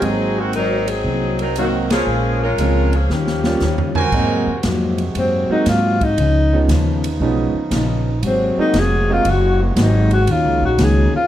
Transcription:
Already playing: grand piano F#3 A#3 C4 D#4, trumpet section F#4 A#4 C5 G#5
0.02 upright bass G#1, steel-string acoustic guitar G#2 F#3 A#3, saxophone section F#3 C4 D#4 G#4, ride
0.06 steel-string acoustic guitar C4
0.38 saxophone section D#3 A#3 C4 F#4
0.53 steel-string acoustic guitar G#2 F#3 A#3, saxophone section F#3 C4 D#4 A#4, hi-hat pedal, ride
0.57 steel-string acoustic guitar C4
0.88 saxophone section F#3 C4 D#4 G#4, ride
1.04 upright bass C2, steel-string acoustic guitar G#2 F#3
1.08 steel-string acoustic guitar A#3 C4
1.39 saxophone section F#3 C4 D#4 A#4, ride
1.56 steel-string acoustic guitar G#2 F#3 A#3, saxophone section D#3 A#3 C4 F#4, grand piano F#3 A#3 C4 D#4, hi-hat pedal, ride
1.60 steel-string acoustic guitar C4
1.90 saxophone section F3 A#3 C#4 G#4, trumpet section F4 A#4 C#5 G#5, snare, ride
2.07 upright bass A#1, steel-string acoustic guitar A#2 F3 G#3 C#4
2.43 saxophone section G#3 C#4 F4 A#4
2.58 upright bass C#2, steel-string acoustic guitar A#2 F3 G#3 C#4, grand piano G#3 C4 C#4 F4, hi-hat pedal, ride
2.93 saxophone section F3 A#3 C#4 G#4, ride
3.09 upright bass D#2, steel-string acoustic guitar D#3 G3 C#4, saxophone section F3 A#3 C#4 G4, snare
3.13 steel-string acoustic guitar F4
3.27 snare
3.44 grand piano G3 A#3 C#4 F4, snare
3.60 upright bass D#2, steel-string acoustic guitar D#3 G3, snare, hi-hat pedal
3.64 steel-string acoustic guitar C#4 F4
3.78 floor tom
3.95 trumpet section F#4 A#4 C5 G#5, floor tom
4.12 upright bass G#2, steel-string acoustic guitar G#2 F#3 A#3 C4, trombone section C3 G#3 A#3 F#4, grand piano F#3 G#3 A#3 C4 D#4, kick, crash
4.47 muted upright bass stroke
4.63 upright bass F2, steel-string acoustic guitar G#2 F#3 A#3 C4, snare, hi-hat pedal, ride
4.98 ride
5.15 upright bass F#2, steel-string acoustic guitar G#2 F#3 A#3 C4, tenor saxophone C4, ride
5.49 grand piano F#3 G#3 A#3 C4 F#4, tenor saxophone D#4, muted upright bass stroke
5.66 upright bass G#2, steel-string acoustic guitar G#2 F#3 A#3 C4, tenor saxophone F4, snare, hi-hat pedal, ride
6.01 tenor saxophone D#4, kick, ride
6.18 upright bass C#2, steel-string acoustic guitar C#3 F3 B3 D#4, trombone section C#3 F3 B3 D#4, ride
6.53 grand piano F3 G#3 B3 C#4 D#4
6.68 upright bass D#2, steel-string acoustic guitar C#3 F3 B3 D#4, snare, hi-hat pedal, ride
7.04 ride
7.20 upright bass B1, steel-string acoustic guitar C#3 F3 B3 D#4, grand piano F3 G#3 B3 C#4 D#4
7.54 muted upright bass stroke
7.71 upright bass A#1, steel-string acoustic guitar C#3 F3 B3, snare, hi-hat pedal, ride
7.75 steel-string acoustic guitar D#4
8.23 upright bass G#1, steel-string acoustic guitar G#2 F#3 A#3 C4, trombone section C3 G#3 A#3 F#4, tenor saxophone C4, ride
8.57 grand piano F#3 G#3 A#3 C4 D#4, tenor saxophone D#4, muted upright bass stroke
8.74 upright bass F1, steel-string acoustic guitar G#2 F#3 A#3 C4, snare, hi-hat pedal, ride
8.80 tenor saxophone G#4
9.09 grand piano F#3 G#3 A#3 C4 D#4, tenor saxophone F4
9.25 upright bass F#1, steel-string acoustic guitar G#2 F#3 A#3 C4, ride
9.30 tenor saxophone F#4
9.63 tenor saxophone A#3
9.76 upright bass G#1, steel-string acoustic guitar G#2 F#3 A#3 C4, snare, hi-hat pedal, ride
9.80 tenor saxophone D#4
10.11 tenor saxophone F#4, ride
10.27 upright bass D#2, trombone section C#3 F#3 D#4, steel-string acoustic guitar D#3 A#3 C#4 F#4, tenor saxophone F4, ride
10.45 upright bass C#2
10.62 upright bass A#1, tenor saxophone F#4
10.78 upright bass C#2, steel-string acoustic guitar D#3 A#3 C#4 F#4, snare, hi-hat pedal, ride
10.84 tenor saxophone G#4
11.16 tenor saxophone F4

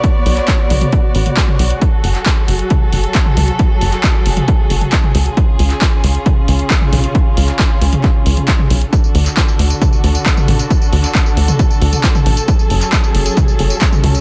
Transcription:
Already playing: string section B3 F#4 C#5 D5
0.04 kick, closed hi-hat
0.26 analog synth bass B1, open hi-hat
0.37 clap, closed hi-hat
0.48 kick, clap, closed hi-hat
0.70 analog synth bass B1, open hi-hat, mid tom
0.81 closed hi-hat, mid tom
0.92 kick, closed hi-hat
1.15 analog synth bass A1, open hi-hat
1.26 closed hi-hat, mid tom
1.37 kick, clap, closed hi-hat
1.48 mid tom
1.59 analog synth bass B1, open hi-hat
1.70 closed hi-hat
1.81 string section F#3 G#4 A4, kick, closed hi-hat
2.04 analog synth bass F#1, open hi-hat
2.15 clap, closed hi-hat
2.26 kick, clap, closed hi-hat
2.48 analog synth bass F#1, open hi-hat
2.59 closed hi-hat
2.70 kick, closed hi-hat, mid tom
2.92 analog synth bass F#1, open hi-hat
3.04 closed hi-hat
3.15 kick, clap, closed hi-hat
3.26 mid tom
3.37 analog synth bass C#2, open hi-hat, mid tom
3.48 closed hi-hat
3.59 kick, closed hi-hat
3.81 analog synth bass F#1, open hi-hat
3.92 clap, closed hi-hat
4.04 kick, clap, closed hi-hat
4.26 analog synth bass F#1, open hi-hat
4.37 closed hi-hat, mid tom
4.48 kick, closed hi-hat
4.70 analog synth bass F#1, open hi-hat
4.81 closed hi-hat, mid tom
4.92 kick, clap, closed hi-hat
5.04 mid tom
5.15 analog synth bass C#2, open hi-hat
5.26 closed hi-hat
5.37 string section C#3 C#4 F4, kick, closed hi-hat
5.59 analog synth bass C#2, open hi-hat
5.70 clap, closed hi-hat
5.82 kick, clap, closed hi-hat
6.04 analog synth bass C#2, open hi-hat
6.15 closed hi-hat
6.26 kick, closed hi-hat, mid tom
6.48 analog synth bass C#2, open hi-hat
6.59 closed hi-hat
6.70 kick, clap, closed hi-hat
6.81 mid tom
6.93 analog synth bass B1, open hi-hat, mid tom
7.04 closed hi-hat
7.15 kick, closed hi-hat
7.37 analog synth bass C#2, open hi-hat
7.48 clap, closed hi-hat
7.59 kick, clap, closed hi-hat
7.81 analog synth bass C#2, open hi-hat
7.93 closed hi-hat, mid tom
8.04 kick, clap, closed hi-hat
8.26 analog synth bass C#2, open hi-hat
8.37 closed hi-hat, mid tom
8.48 kick, clap, closed hi-hat
8.59 mid tom
8.70 analog synth bass B1, open hi-hat
8.81 closed hi-hat
8.93 string section D3 D4 F#4 A4, kick, closed hi-hat, tambourine
9.04 tambourine
9.15 analog synth bass D2, open hi-hat
9.26 clap, closed hi-hat, tambourine
9.37 kick, clap, closed hi-hat, tambourine
9.48 tambourine
9.59 analog synth bass D2, open hi-hat
9.70 closed hi-hat, tambourine
9.82 kick, closed hi-hat, mid tom, tambourine
9.93 tambourine
10.04 analog synth bass D2, open hi-hat
10.15 closed hi-hat, tambourine
10.26 kick, clap, closed hi-hat, tambourine
10.37 mid tom, tambourine
10.48 analog synth bass A1, open hi-hat, mid tom
10.59 closed hi-hat, tambourine
10.70 kick, closed hi-hat, tambourine
10.82 tambourine
10.93 analog synth bass D2, open hi-hat
11.04 clap, closed hi-hat, tambourine
11.15 kick, clap, closed hi-hat, tambourine
11.26 tambourine
11.37 analog synth bass D2, open hi-hat
11.48 closed hi-hat, mid tom, tambourine
11.59 kick, closed hi-hat, tambourine
11.70 tambourine
11.81 analog synth bass D2, open hi-hat
11.93 closed hi-hat, mid tom, tambourine
12.04 kick, clap, closed hi-hat, tambourine
12.15 mid tom, tambourine
12.26 analog synth bass A1, open hi-hat
12.37 closed hi-hat, tambourine
12.48 string section F#3 C#4 G#4, kick, closed hi-hat, tambourine
12.59 tambourine
12.70 analog synth bass F#1, open hi-hat
12.81 clap, closed hi-hat, tambourine
12.92 kick, clap, closed hi-hat, tambourine
13.04 tambourine
13.15 analog synth bass F#1, open hi-hat
13.26 closed hi-hat, tambourine
13.37 kick, closed hi-hat, mid tom, tambourine
13.48 tambourine
13.59 analog synth bass F#1, open hi-hat
13.70 closed hi-hat, tambourine
13.81 kick, clap, closed hi-hat, tambourine
13.92 mid tom, tambourine
14.04 analog synth bass C#2, open hi-hat, mid tom
14.15 closed hi-hat, tambourine

